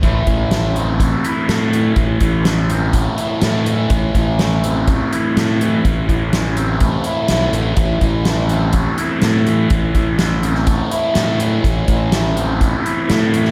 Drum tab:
HH |x-x-x-x-x-x-x-x-|x-x-x-x-x-x-x-x-|x-x-x-x-x-x-x-x-|x-x-x-x-x-x-x-x-|
SD |----o-------o---|----o-------o---|----o-------o---|----o-------o---|
BD |o-o-----o-------|o-o-----o-------|o-o-----o-------|o-o-----o-------|

HH |x-x-x-x-x-x-x-x-|x-x-x-x-x-x-x-x-|x-x-x-x-x-x-x-x-|
SD |----o-------o---|----o--o----o---|----o-------o--o|
BD |o-o-----o-------|o-o-----o-------|o-o-----o-------|